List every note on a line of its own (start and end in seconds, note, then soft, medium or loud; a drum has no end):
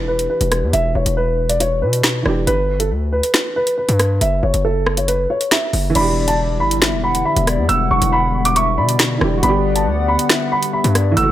0.00 0.28 E1 loud
0.00 2.19 E3 medium
0.00 2.22 D4 medium
0.00 2.24 G4 medium
0.08 0.26 B4 medium
0.19 closed hi-hat medium
0.30 0.71 B4 medium
0.41 0.64 E1 loud
0.41 closed hi-hat medium
0.52 cross-stick medium
0.52 closed hi-hat medium
0.63 0.73 E2 loud
0.73 0.94 E1 loud
0.73 0.91 E5 loud
0.73 closed hi-hat medium
0.95 1.06 E1 loud
0.95 1.13 C#5 medium
1.06 1.84 E1 loud
1.06 closed hi-hat medium
1.17 1.48 B4 medium
1.49 1.58 D5 medium
1.49 closed hi-hat medium
1.60 1.78 C#5 medium
1.60 closed hi-hat medium
1.82 2.23 B2 loud
1.82 2.43 B4 medium
1.93 closed hi-hat medium
2.03 finger snap medium
2.03 snare loud
2.03 closed hi-hat medium
2.23 2.46 E1 loud
2.23 2.46 E3 medium
2.23 2.47 D4 medium
2.23 cross-stick medium
2.28 2.49 G4 medium
2.47 2.92 G1 loud
2.47 2.78 B4 loud
2.47 closed hi-hat medium
2.80 2.89 A4 medium
2.80 closed hi-hat medium
2.91 3.22 D2 loud
3.13 3.53 B4 medium
3.23 closed hi-hat medium
3.34 finger snap medium
3.34 snare loud
3.34 closed hi-hat medium
3.56 3.74 B4 medium
3.67 closed hi-hat medium
3.78 4.19 B4 medium
3.89 4.20 G2 loud
3.89 closed hi-hat medium
3.99 cross-stick loud
3.99 closed hi-hat medium
4.21 4.42 F#1 loud
4.21 4.39 E5 medium
4.21 closed hi-hat medium
4.43 4.53 F#1 loud
4.43 4.60 C#5 medium
4.54 5.27 F#1 loud
4.54 closed hi-hat medium
4.65 4.95 A4 medium
4.87 cross-stick loud
4.97 5.06 C#5 medium
4.97 closed hi-hat medium
5.08 5.26 B4 medium
5.08 closed hi-hat medium
5.30 5.48 C#5 medium
5.41 closed hi-hat medium
5.51 5.93 E5 medium
5.51 finger snap medium
5.51 snare loud
5.51 closed hi-hat medium
5.73 5.94 F#1 loud
5.73 open hi-hat medium
5.90 9.15 E3 medium
5.95 6.62 E1 loud
5.95 11.13 D3 medium
5.95 11.13 G3 medium
5.95 9.40 B3 medium
5.95 9.17 D4 medium
5.95 9.40 E4 medium
5.95 6.78 D5 loud
5.95 6.26 B5 loud
5.95 closed hi-hat medium
5.95 crash loud
6.01 9.20 G4 medium
6.28 6.37 A5 medium
6.28 closed hi-hat medium
6.60 6.94 G1 loud
6.60 7.01 B5 medium
6.71 closed hi-hat medium
6.82 7.03 E5 medium
6.82 finger snap medium
6.82 snare loud
6.82 closed hi-hat medium
6.93 7.24 E1 loud
7.04 7.25 F#5 medium
7.04 7.21 B5 medium
7.15 closed hi-hat medium
7.25 7.46 E5 medium
7.25 7.66 B5 medium
7.36 7.60 E1 loud
7.36 closed hi-hat medium
7.47 7.68 D5 medium
7.47 cross-stick medium
7.47 closed hi-hat medium
7.58 7.69 E2 loud
7.69 7.90 E1 loud
7.69 8.52 F#5 loud
7.69 7.86 E6 loud
7.69 closed hi-hat medium
7.91 8.01 E1 loud
7.91 8.08 C#6 medium
8.02 8.79 E1 loud
8.02 closed hi-hat medium
8.12 8.43 B5 medium
8.45 8.54 D6 medium
8.45 closed hi-hat medium
8.56 8.77 E5 medium
8.56 8.74 C#6 medium
8.56 closed hi-hat medium
8.78 9.19 B2 loud
8.78 9.39 D5 medium
8.78 9.39 B5 medium
8.89 closed hi-hat medium
8.99 finger snap medium
8.99 snare loud
8.99 closed hi-hat medium
9.18 9.42 E1 loud
9.18 9.42 E3 medium
9.18 9.43 D4 medium
9.18 cross-stick loud
9.24 9.44 G4 medium
9.38 11.11 F#4 medium
9.43 9.88 G1 loud
9.43 11.15 B3 medium
9.43 11.13 B3 medium
9.43 10.26 D5 loud
9.43 11.15 F#5 medium
9.43 9.74 B5 loud
9.43 closed hi-hat medium
9.49 11.16 G4 medium
9.76 9.84 A5 medium
9.76 closed hi-hat medium
9.86 10.17 D2 loud
10.08 10.49 B5 medium
10.19 closed hi-hat medium
10.29 10.51 E5 medium
10.29 finger snap medium
10.29 snare loud
10.29 closed hi-hat medium
10.52 10.72 F#5 medium
10.52 10.69 B5 medium
10.63 closed hi-hat medium
10.73 10.94 E5 medium
10.73 11.14 B5 medium
10.84 11.16 G2 loud
10.84 closed hi-hat medium
10.95 11.16 D5 medium
10.95 cross-stick medium
10.95 closed hi-hat medium
11.11 11.32 E3 medium
11.17 11.32 F#1 loud
11.17 11.32 C#3 medium
11.17 11.32 F#3 medium
11.17 11.32 A3 medium
11.17 11.32 E4 medium
11.17 11.32 F#5 loud
11.17 11.32 E6 loud
11.17 closed hi-hat medium
11.22 11.32 F#4 medium